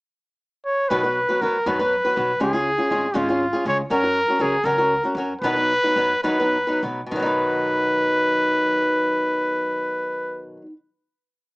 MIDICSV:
0, 0, Header, 1, 4, 480
1, 0, Start_track
1, 0, Key_signature, 5, "major"
1, 0, Tempo, 499584
1, 864, Time_signature, 6, 3, 24, 8
1, 4707, Tempo, 529568
1, 5667, Tempo, 564972
1, 6147, Tempo, 594648
1, 10210, End_track
2, 0, Start_track
2, 0, Title_t, "Trumpet"
2, 0, Program_c, 0, 56
2, 627, Note_on_c, 0, 73, 69
2, 854, Note_on_c, 0, 71, 79
2, 869, Note_off_c, 0, 73, 0
2, 1360, Note_on_c, 0, 70, 68
2, 1374, Note_off_c, 0, 71, 0
2, 1613, Note_on_c, 0, 71, 74
2, 1627, Note_off_c, 0, 70, 0
2, 2323, Note_off_c, 0, 71, 0
2, 2330, Note_on_c, 0, 68, 81
2, 3041, Note_on_c, 0, 65, 68
2, 3055, Note_off_c, 0, 68, 0
2, 3515, Note_off_c, 0, 65, 0
2, 3531, Note_on_c, 0, 73, 71
2, 3632, Note_off_c, 0, 73, 0
2, 3771, Note_on_c, 0, 70, 85
2, 4244, Note_on_c, 0, 68, 76
2, 4258, Note_off_c, 0, 70, 0
2, 4469, Note_on_c, 0, 70, 72
2, 4483, Note_off_c, 0, 68, 0
2, 4921, Note_off_c, 0, 70, 0
2, 5175, Note_on_c, 0, 71, 96
2, 5868, Note_off_c, 0, 71, 0
2, 5903, Note_on_c, 0, 71, 78
2, 6411, Note_off_c, 0, 71, 0
2, 6637, Note_on_c, 0, 71, 80
2, 9307, Note_off_c, 0, 71, 0
2, 10210, End_track
3, 0, Start_track
3, 0, Title_t, "Nylon-string guitar"
3, 0, Program_c, 1, 24
3, 866, Note_on_c, 1, 47, 60
3, 872, Note_on_c, 1, 51, 63
3, 873, Note_on_c, 1, 54, 60
3, 876, Note_on_c, 1, 59, 61
3, 876, Note_on_c, 1, 66, 65
3, 877, Note_on_c, 1, 71, 60
3, 979, Note_off_c, 1, 71, 0
3, 987, Note_off_c, 1, 47, 0
3, 990, Note_off_c, 1, 51, 0
3, 990, Note_off_c, 1, 59, 0
3, 991, Note_off_c, 1, 54, 0
3, 991, Note_on_c, 1, 71, 46
3, 992, Note_off_c, 1, 66, 0
3, 1002, Note_on_c, 1, 59, 38
3, 1002, Note_on_c, 1, 66, 40
3, 1006, Note_on_c, 1, 54, 27
3, 1135, Note_off_c, 1, 71, 0
3, 1140, Note_off_c, 1, 59, 0
3, 1141, Note_off_c, 1, 66, 0
3, 1143, Note_off_c, 1, 54, 0
3, 1236, Note_on_c, 1, 71, 46
3, 1244, Note_on_c, 1, 66, 39
3, 1249, Note_on_c, 1, 59, 42
3, 1250, Note_on_c, 1, 54, 36
3, 1351, Note_off_c, 1, 54, 0
3, 1351, Note_off_c, 1, 59, 0
3, 1353, Note_off_c, 1, 71, 0
3, 1357, Note_off_c, 1, 66, 0
3, 1362, Note_on_c, 1, 54, 50
3, 1363, Note_on_c, 1, 59, 46
3, 1371, Note_on_c, 1, 66, 46
3, 1375, Note_on_c, 1, 71, 50
3, 1500, Note_off_c, 1, 54, 0
3, 1501, Note_off_c, 1, 59, 0
3, 1505, Note_off_c, 1, 66, 0
3, 1507, Note_off_c, 1, 71, 0
3, 1598, Note_on_c, 1, 47, 52
3, 1598, Note_on_c, 1, 54, 59
3, 1599, Note_on_c, 1, 51, 55
3, 1603, Note_on_c, 1, 59, 67
3, 1606, Note_on_c, 1, 66, 63
3, 1607, Note_on_c, 1, 71, 60
3, 1711, Note_off_c, 1, 71, 0
3, 1713, Note_off_c, 1, 66, 0
3, 1717, Note_off_c, 1, 47, 0
3, 1717, Note_off_c, 1, 51, 0
3, 1717, Note_off_c, 1, 54, 0
3, 1719, Note_off_c, 1, 59, 0
3, 1723, Note_on_c, 1, 71, 51
3, 1724, Note_on_c, 1, 66, 49
3, 1733, Note_on_c, 1, 54, 44
3, 1733, Note_on_c, 1, 59, 46
3, 1864, Note_off_c, 1, 66, 0
3, 1864, Note_off_c, 1, 71, 0
3, 1869, Note_off_c, 1, 54, 0
3, 1869, Note_off_c, 1, 59, 0
3, 1966, Note_on_c, 1, 71, 46
3, 1972, Note_on_c, 1, 66, 33
3, 1975, Note_on_c, 1, 59, 38
3, 1984, Note_on_c, 1, 54, 33
3, 2063, Note_off_c, 1, 54, 0
3, 2072, Note_off_c, 1, 59, 0
3, 2073, Note_off_c, 1, 66, 0
3, 2074, Note_on_c, 1, 54, 41
3, 2079, Note_off_c, 1, 71, 0
3, 2084, Note_on_c, 1, 59, 52
3, 2085, Note_on_c, 1, 66, 38
3, 2090, Note_on_c, 1, 71, 43
3, 2217, Note_off_c, 1, 54, 0
3, 2222, Note_off_c, 1, 59, 0
3, 2222, Note_off_c, 1, 66, 0
3, 2225, Note_off_c, 1, 71, 0
3, 2305, Note_on_c, 1, 49, 54
3, 2308, Note_on_c, 1, 61, 58
3, 2310, Note_on_c, 1, 56, 57
3, 2311, Note_on_c, 1, 65, 70
3, 2312, Note_on_c, 1, 68, 62
3, 2419, Note_off_c, 1, 68, 0
3, 2429, Note_off_c, 1, 49, 0
3, 2429, Note_off_c, 1, 65, 0
3, 2430, Note_off_c, 1, 61, 0
3, 2431, Note_off_c, 1, 56, 0
3, 2431, Note_on_c, 1, 68, 48
3, 2440, Note_on_c, 1, 65, 43
3, 2444, Note_on_c, 1, 61, 32
3, 2576, Note_off_c, 1, 68, 0
3, 2581, Note_off_c, 1, 65, 0
3, 2583, Note_off_c, 1, 61, 0
3, 2671, Note_on_c, 1, 68, 44
3, 2675, Note_on_c, 1, 65, 35
3, 2680, Note_on_c, 1, 61, 36
3, 2781, Note_off_c, 1, 61, 0
3, 2789, Note_on_c, 1, 56, 46
3, 2791, Note_off_c, 1, 68, 0
3, 2792, Note_on_c, 1, 61, 45
3, 2793, Note_off_c, 1, 65, 0
3, 2802, Note_on_c, 1, 68, 53
3, 2805, Note_on_c, 1, 65, 52
3, 2933, Note_off_c, 1, 56, 0
3, 2935, Note_off_c, 1, 61, 0
3, 2940, Note_off_c, 1, 68, 0
3, 2941, Note_off_c, 1, 65, 0
3, 3014, Note_on_c, 1, 49, 60
3, 3019, Note_on_c, 1, 56, 54
3, 3025, Note_on_c, 1, 65, 69
3, 3028, Note_on_c, 1, 61, 73
3, 3028, Note_on_c, 1, 68, 54
3, 3144, Note_off_c, 1, 49, 0
3, 3146, Note_off_c, 1, 56, 0
3, 3146, Note_off_c, 1, 68, 0
3, 3149, Note_off_c, 1, 65, 0
3, 3150, Note_off_c, 1, 61, 0
3, 3158, Note_on_c, 1, 68, 46
3, 3167, Note_on_c, 1, 65, 50
3, 3173, Note_on_c, 1, 61, 47
3, 3300, Note_off_c, 1, 68, 0
3, 3304, Note_off_c, 1, 65, 0
3, 3307, Note_off_c, 1, 61, 0
3, 3391, Note_on_c, 1, 68, 47
3, 3399, Note_on_c, 1, 65, 42
3, 3409, Note_on_c, 1, 61, 33
3, 3502, Note_off_c, 1, 61, 0
3, 3506, Note_off_c, 1, 65, 0
3, 3510, Note_off_c, 1, 68, 0
3, 3512, Note_on_c, 1, 56, 43
3, 3514, Note_on_c, 1, 61, 53
3, 3517, Note_on_c, 1, 65, 48
3, 3521, Note_on_c, 1, 68, 48
3, 3653, Note_off_c, 1, 56, 0
3, 3654, Note_off_c, 1, 61, 0
3, 3656, Note_off_c, 1, 65, 0
3, 3658, Note_off_c, 1, 68, 0
3, 3750, Note_on_c, 1, 54, 63
3, 3755, Note_on_c, 1, 61, 62
3, 3757, Note_on_c, 1, 66, 66
3, 3759, Note_on_c, 1, 70, 80
3, 3862, Note_off_c, 1, 70, 0
3, 3866, Note_off_c, 1, 66, 0
3, 3869, Note_off_c, 1, 54, 0
3, 3871, Note_off_c, 1, 61, 0
3, 3874, Note_on_c, 1, 70, 39
3, 3877, Note_on_c, 1, 66, 38
3, 3894, Note_on_c, 1, 61, 36
3, 4014, Note_off_c, 1, 70, 0
3, 4016, Note_off_c, 1, 66, 0
3, 4024, Note_off_c, 1, 61, 0
3, 4115, Note_on_c, 1, 70, 43
3, 4125, Note_on_c, 1, 66, 47
3, 4130, Note_on_c, 1, 61, 39
3, 4214, Note_off_c, 1, 61, 0
3, 4220, Note_off_c, 1, 66, 0
3, 4220, Note_on_c, 1, 54, 51
3, 4225, Note_off_c, 1, 70, 0
3, 4225, Note_on_c, 1, 61, 60
3, 4231, Note_on_c, 1, 66, 58
3, 4237, Note_on_c, 1, 70, 55
3, 4365, Note_off_c, 1, 54, 0
3, 4368, Note_off_c, 1, 61, 0
3, 4371, Note_off_c, 1, 66, 0
3, 4374, Note_off_c, 1, 70, 0
3, 4469, Note_on_c, 1, 54, 61
3, 4470, Note_on_c, 1, 61, 56
3, 4473, Note_on_c, 1, 66, 61
3, 4480, Note_on_c, 1, 70, 64
3, 4582, Note_off_c, 1, 70, 0
3, 4589, Note_off_c, 1, 54, 0
3, 4589, Note_off_c, 1, 61, 0
3, 4591, Note_off_c, 1, 66, 0
3, 4594, Note_on_c, 1, 70, 52
3, 4602, Note_on_c, 1, 66, 44
3, 4612, Note_on_c, 1, 61, 41
3, 4736, Note_off_c, 1, 70, 0
3, 4739, Note_off_c, 1, 66, 0
3, 4744, Note_off_c, 1, 61, 0
3, 4831, Note_on_c, 1, 70, 41
3, 4840, Note_on_c, 1, 66, 36
3, 4843, Note_on_c, 1, 61, 40
3, 4944, Note_off_c, 1, 70, 0
3, 4946, Note_off_c, 1, 61, 0
3, 4948, Note_off_c, 1, 66, 0
3, 4950, Note_on_c, 1, 54, 51
3, 4957, Note_on_c, 1, 61, 44
3, 4963, Note_on_c, 1, 70, 48
3, 4964, Note_on_c, 1, 66, 52
3, 5086, Note_off_c, 1, 54, 0
3, 5090, Note_off_c, 1, 61, 0
3, 5093, Note_off_c, 1, 66, 0
3, 5093, Note_off_c, 1, 70, 0
3, 5192, Note_on_c, 1, 47, 68
3, 5197, Note_on_c, 1, 54, 70
3, 5198, Note_on_c, 1, 59, 72
3, 5199, Note_on_c, 1, 51, 69
3, 5201, Note_on_c, 1, 63, 74
3, 5204, Note_on_c, 1, 71, 62
3, 5294, Note_off_c, 1, 71, 0
3, 5299, Note_off_c, 1, 63, 0
3, 5305, Note_off_c, 1, 59, 0
3, 5305, Note_on_c, 1, 71, 43
3, 5306, Note_off_c, 1, 47, 0
3, 5306, Note_off_c, 1, 54, 0
3, 5309, Note_off_c, 1, 51, 0
3, 5310, Note_on_c, 1, 63, 40
3, 5316, Note_on_c, 1, 59, 38
3, 5317, Note_on_c, 1, 54, 34
3, 5449, Note_off_c, 1, 71, 0
3, 5452, Note_off_c, 1, 63, 0
3, 5454, Note_off_c, 1, 59, 0
3, 5455, Note_off_c, 1, 54, 0
3, 5555, Note_on_c, 1, 71, 39
3, 5557, Note_on_c, 1, 63, 41
3, 5566, Note_on_c, 1, 54, 33
3, 5566, Note_on_c, 1, 59, 41
3, 5659, Note_off_c, 1, 54, 0
3, 5660, Note_off_c, 1, 59, 0
3, 5669, Note_off_c, 1, 71, 0
3, 5670, Note_off_c, 1, 63, 0
3, 5670, Note_on_c, 1, 54, 56
3, 5671, Note_on_c, 1, 59, 49
3, 5680, Note_on_c, 1, 63, 55
3, 5680, Note_on_c, 1, 71, 56
3, 5810, Note_off_c, 1, 54, 0
3, 5810, Note_off_c, 1, 59, 0
3, 5814, Note_off_c, 1, 71, 0
3, 5815, Note_off_c, 1, 63, 0
3, 5900, Note_on_c, 1, 51, 48
3, 5904, Note_on_c, 1, 54, 63
3, 5905, Note_on_c, 1, 47, 62
3, 5907, Note_on_c, 1, 59, 56
3, 5908, Note_on_c, 1, 63, 67
3, 5911, Note_on_c, 1, 71, 72
3, 6024, Note_off_c, 1, 51, 0
3, 6026, Note_off_c, 1, 47, 0
3, 6026, Note_off_c, 1, 54, 0
3, 6027, Note_off_c, 1, 59, 0
3, 6028, Note_off_c, 1, 63, 0
3, 6029, Note_off_c, 1, 71, 0
3, 6039, Note_on_c, 1, 71, 51
3, 6041, Note_on_c, 1, 63, 46
3, 6046, Note_on_c, 1, 59, 41
3, 6050, Note_on_c, 1, 54, 40
3, 6179, Note_off_c, 1, 63, 0
3, 6179, Note_off_c, 1, 71, 0
3, 6182, Note_off_c, 1, 59, 0
3, 6184, Note_off_c, 1, 54, 0
3, 6266, Note_on_c, 1, 71, 46
3, 6275, Note_on_c, 1, 59, 38
3, 6276, Note_on_c, 1, 63, 36
3, 6278, Note_on_c, 1, 54, 35
3, 6380, Note_off_c, 1, 54, 0
3, 6384, Note_off_c, 1, 71, 0
3, 6386, Note_off_c, 1, 59, 0
3, 6389, Note_off_c, 1, 63, 0
3, 6389, Note_on_c, 1, 54, 41
3, 6396, Note_on_c, 1, 59, 48
3, 6399, Note_on_c, 1, 63, 40
3, 6403, Note_on_c, 1, 71, 50
3, 6530, Note_off_c, 1, 54, 0
3, 6534, Note_off_c, 1, 59, 0
3, 6535, Note_off_c, 1, 63, 0
3, 6537, Note_off_c, 1, 71, 0
3, 6584, Note_on_c, 1, 47, 60
3, 6623, Note_on_c, 1, 51, 71
3, 6658, Note_on_c, 1, 54, 67
3, 6689, Note_on_c, 1, 59, 68
3, 6713, Note_on_c, 1, 63, 77
3, 6742, Note_on_c, 1, 71, 59
3, 9409, Note_off_c, 1, 47, 0
3, 9449, Note_off_c, 1, 51, 0
3, 9484, Note_off_c, 1, 54, 0
3, 9515, Note_off_c, 1, 59, 0
3, 9538, Note_off_c, 1, 63, 0
3, 9568, Note_off_c, 1, 71, 0
3, 10210, End_track
4, 0, Start_track
4, 0, Title_t, "Upright bass"
4, 0, Program_c, 2, 32
4, 871, Note_on_c, 2, 35, 81
4, 1185, Note_off_c, 2, 35, 0
4, 1359, Note_on_c, 2, 42, 68
4, 1512, Note_off_c, 2, 42, 0
4, 1596, Note_on_c, 2, 42, 87
4, 1909, Note_off_c, 2, 42, 0
4, 2084, Note_on_c, 2, 35, 83
4, 2235, Note_off_c, 2, 35, 0
4, 2316, Note_on_c, 2, 37, 76
4, 2627, Note_off_c, 2, 37, 0
4, 2795, Note_on_c, 2, 32, 67
4, 2949, Note_off_c, 2, 32, 0
4, 3038, Note_on_c, 2, 32, 87
4, 3348, Note_off_c, 2, 32, 0
4, 3509, Note_on_c, 2, 37, 80
4, 3663, Note_off_c, 2, 37, 0
4, 3750, Note_on_c, 2, 42, 90
4, 4060, Note_off_c, 2, 42, 0
4, 4222, Note_on_c, 2, 37, 77
4, 4378, Note_off_c, 2, 37, 0
4, 4455, Note_on_c, 2, 37, 90
4, 4773, Note_off_c, 2, 37, 0
4, 4931, Note_on_c, 2, 42, 90
4, 5088, Note_off_c, 2, 42, 0
4, 5175, Note_on_c, 2, 35, 85
4, 5495, Note_off_c, 2, 35, 0
4, 5667, Note_on_c, 2, 42, 70
4, 5821, Note_off_c, 2, 42, 0
4, 5907, Note_on_c, 2, 42, 72
4, 6222, Note_off_c, 2, 42, 0
4, 6392, Note_on_c, 2, 35, 82
4, 6546, Note_off_c, 2, 35, 0
4, 6626, Note_on_c, 2, 35, 84
4, 9295, Note_off_c, 2, 35, 0
4, 10210, End_track
0, 0, End_of_file